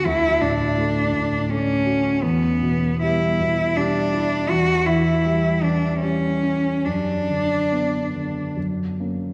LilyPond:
<<
  \new Staff \with { instrumentName = "Cello" } { \time 3/4 \key b \minor \tempo 4 = 79 e'8 d'4. cis'4 | b4 e'4 d'4 | fis'8 e'4 d'8 cis'4 | d'2 r4 | }
  \new Staff \with { instrumentName = "Grand piano" } { \clef bass \time 3/4 \key b \minor d,8 a,8 a8 a,8 a8 fis'8 | e,8 b,8 g8 b,8 g8 e'8 | e,8 e8 g8 e8 g8 cis'8 | fis,8 d8 b8 d8 fis,8 <ais cis'>8 | }
>>